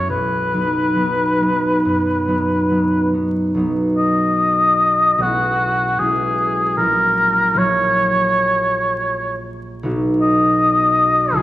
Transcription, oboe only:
0, 0, Header, 1, 2, 480
1, 0, Start_track
1, 0, Key_signature, 5, "major"
1, 0, Tempo, 867052
1, 51, Time_signature, 4, 2, 24, 8
1, 1971, Tempo, 831025
1, 2931, Tempo, 782269
1, 4851, Tempo, 750000
1, 6817, End_track
2, 0, Start_track
2, 0, Title_t, "Oboe"
2, 0, Program_c, 0, 68
2, 55, Note_on_c, 0, 71, 51
2, 1709, Note_off_c, 0, 71, 0
2, 2211, Note_on_c, 0, 75, 68
2, 2926, Note_on_c, 0, 66, 64
2, 2935, Note_off_c, 0, 75, 0
2, 3404, Note_on_c, 0, 68, 57
2, 3413, Note_off_c, 0, 66, 0
2, 3878, Note_off_c, 0, 68, 0
2, 3881, Note_on_c, 0, 70, 65
2, 4375, Note_on_c, 0, 73, 72
2, 4385, Note_off_c, 0, 70, 0
2, 5575, Note_off_c, 0, 73, 0
2, 6045, Note_on_c, 0, 75, 75
2, 6768, Note_on_c, 0, 68, 75
2, 6778, Note_off_c, 0, 75, 0
2, 6817, Note_off_c, 0, 68, 0
2, 6817, End_track
0, 0, End_of_file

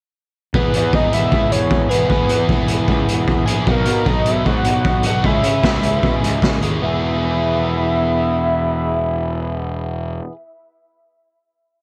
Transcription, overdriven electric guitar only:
0, 0, Header, 1, 2, 480
1, 0, Start_track
1, 0, Key_signature, 4, "major"
1, 0, Tempo, 392157
1, 674, Time_signature, 4, 2, 24, 8
1, 14470, End_track
2, 0, Start_track
2, 0, Title_t, "Overdriven electric guitar"
2, 0, Program_c, 0, 29
2, 668, Note_on_c, 0, 59, 73
2, 695, Note_on_c, 0, 64, 81
2, 714, Note_on_c, 0, 68, 77
2, 2302, Note_off_c, 0, 68, 0
2, 2317, Note_on_c, 0, 68, 76
2, 2330, Note_off_c, 0, 64, 0
2, 2344, Note_on_c, 0, 64, 72
2, 2357, Note_off_c, 0, 59, 0
2, 2362, Note_on_c, 0, 59, 59
2, 2548, Note_off_c, 0, 59, 0
2, 2553, Note_on_c, 0, 59, 75
2, 2557, Note_off_c, 0, 64, 0
2, 2558, Note_off_c, 0, 68, 0
2, 2572, Note_on_c, 0, 64, 84
2, 2591, Note_on_c, 0, 68, 95
2, 4219, Note_off_c, 0, 68, 0
2, 4234, Note_on_c, 0, 68, 76
2, 4240, Note_off_c, 0, 64, 0
2, 4255, Note_on_c, 0, 64, 62
2, 4278, Note_off_c, 0, 59, 0
2, 4283, Note_on_c, 0, 59, 57
2, 4476, Note_off_c, 0, 68, 0
2, 4486, Note_off_c, 0, 64, 0
2, 4486, Note_on_c, 0, 54, 85
2, 4495, Note_off_c, 0, 59, 0
2, 4500, Note_on_c, 0, 59, 87
2, 4508, Note_on_c, 0, 63, 81
2, 4524, Note_on_c, 0, 66, 91
2, 6164, Note_off_c, 0, 54, 0
2, 6169, Note_off_c, 0, 66, 0
2, 6176, Note_off_c, 0, 63, 0
2, 6183, Note_on_c, 0, 66, 74
2, 6197, Note_on_c, 0, 63, 69
2, 6207, Note_off_c, 0, 59, 0
2, 6212, Note_on_c, 0, 59, 64
2, 6228, Note_on_c, 0, 54, 65
2, 6412, Note_off_c, 0, 66, 0
2, 6418, Note_off_c, 0, 54, 0
2, 6420, Note_off_c, 0, 63, 0
2, 6423, Note_on_c, 0, 52, 73
2, 6426, Note_off_c, 0, 59, 0
2, 6431, Note_on_c, 0, 56, 86
2, 6448, Note_on_c, 0, 61, 87
2, 6462, Note_on_c, 0, 68, 83
2, 8085, Note_off_c, 0, 68, 0
2, 8097, Note_off_c, 0, 52, 0
2, 8100, Note_on_c, 0, 68, 71
2, 8102, Note_off_c, 0, 56, 0
2, 8105, Note_off_c, 0, 61, 0
2, 8120, Note_on_c, 0, 61, 71
2, 8132, Note_on_c, 0, 56, 71
2, 8152, Note_on_c, 0, 52, 63
2, 8334, Note_off_c, 0, 68, 0
2, 8344, Note_off_c, 0, 56, 0
2, 8344, Note_off_c, 0, 61, 0
2, 8349, Note_on_c, 0, 59, 81
2, 8360, Note_off_c, 0, 52, 0
2, 8373, Note_on_c, 0, 64, 86
2, 8396, Note_on_c, 0, 68, 86
2, 12633, Note_off_c, 0, 59, 0
2, 12657, Note_off_c, 0, 64, 0
2, 12680, Note_off_c, 0, 68, 0
2, 14470, End_track
0, 0, End_of_file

